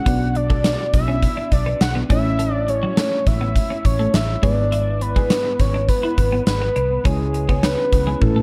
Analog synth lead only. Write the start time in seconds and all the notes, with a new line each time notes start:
Already playing: F#5
0.36 D5
0.94 E5
1.52 D5
1.81 F#5
2.11 E5
2.53 D5
2.69 C#5
3.27 E5
3.85 C#5
4.14 E5
4.43 D5
5.02 B4
5.60 C#5
5.89 B4
6.47 B4
7.06 G#4
7.64 B4
8.22 A4